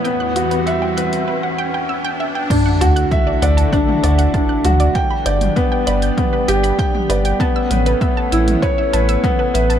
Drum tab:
CC |----------------|x---------------|----------------|----------------|
HH |x-xxx-xx--------|x-xxx-xxx-xxx-xx|x-xxx-xxx-xxx-xx|x-xxx-xxx-xxx-xx|
T2 |-o----o---------|----o----o----o-|---o----o----o--|--o----o----o---|
BD |----------------|o---o---o---o---|o---o---o---o---|o---o---o---o---|